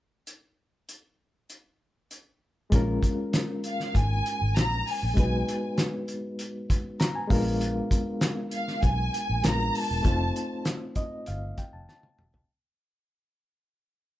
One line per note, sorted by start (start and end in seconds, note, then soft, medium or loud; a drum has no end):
0.27 closed hi-hat medium
0.89 closed hi-hat soft
1.50 closed hi-hat soft
2.11 closed hi-hat soft
2.70 2.97 A#1 medium
2.70 5.12 G#3 medium
2.70 5.12 A#3 medium
2.70 5.13 C#4 medium
2.70 kick loud
2.70 closed hi-hat medium
2.74 5.14 F4 medium
2.74 5.14 A#4 medium
3.03 kick medium
3.03 closed hi-hat medium
3.33 snare medium
3.33 closed hi-hat medium
3.64 3.94 F5 medium
3.64 closed hi-hat medium
3.80 snare soft
3.95 4.20 G#1 medium
3.95 4.57 G#5 medium
3.95 kick medium
3.95 closed hi-hat medium
4.26 closed hi-hat medium
4.41 4.53 G#1 medium
4.56 4.81 A#1 medium
4.56 4.87 A#5 loud
4.56 snare medium
4.56 closed hi-hat medium
4.87 5.79 G#5 medium
4.87 open hi-hat medium
5.03 5.15 A#1 medium
5.14 5.42 B1 medium
5.14 7.25 G#3 medium
5.14 7.26 B3 soft
5.14 7.26 D#4 medium
5.14 7.27 F#4 soft
5.14 kick loud
5.14 closed hi-hat medium
5.19 7.28 B4 medium
5.49 closed hi-hat medium
5.78 snare medium
5.78 closed hi-hat medium
6.08 closed hi-hat medium
6.39 closed hi-hat medium
6.70 kick medium
6.70 closed hi-hat medium
7.00 7.14 A#5 medium
7.00 snare loud
7.00 closed hi-hat medium
7.15 7.29 G#5 medium
7.28 7.80 A#1 medium
7.28 9.39 G#3 medium
7.28 9.39 B3 medium
7.28 9.40 D4 medium
7.28 7.59 F5 medium
7.28 kick medium
7.28 open hi-hat medium
7.32 9.41 F4 medium
7.32 9.41 A#4 medium
7.61 closed hi-hat medium
7.91 kick medium
7.91 closed hi-hat medium
8.21 snare loud
8.21 closed hi-hat medium
8.51 8.81 F5 medium
8.51 closed hi-hat medium
8.68 snare soft
8.82 9.08 B1 medium
8.82 9.44 G#5 medium
8.82 kick medium
8.82 closed hi-hat medium
9.14 closed hi-hat medium
9.30 9.42 A#1 medium
9.42 9.70 A#1 medium
9.42 10.04 G#3 medium
9.42 10.04 B3 soft
9.42 10.05 D4 soft
9.42 10.05 F4 soft
9.42 10.05 A#4 soft
9.42 9.75 A#5 loud
9.42 snare medium
9.42 closed hi-hat medium
9.75 10.67 A5 loud
9.75 open hi-hat medium
9.91 10.03 E1 medium
10.03 10.30 F1 loud
10.03 12.44 A3 medium
10.03 12.45 C4 medium
10.03 12.46 D#4 medium
10.03 kick loud
10.03 closed hi-hat medium
10.07 12.46 F4 medium
10.07 12.47 C5 medium
10.36 closed hi-hat medium
10.65 snare loud
10.65 closed hi-hat medium
10.95 11.25 D#5 medium
10.95 kick medium
10.95 closed hi-hat medium
11.26 11.53 G1 medium
11.26 11.56 F5 medium
11.26 closed hi-hat medium
11.58 11.72 G5 medium
11.58 kick medium
11.58 closed hi-hat medium
11.73 11.86 F1 medium
11.73 11.87 A5 medium
11.89 12.46 A5 medium
11.89 snare soft
12.03 high tom medium
12.19 12.44 E1 medium
12.19 mid tom medium
12.34 floor tom medium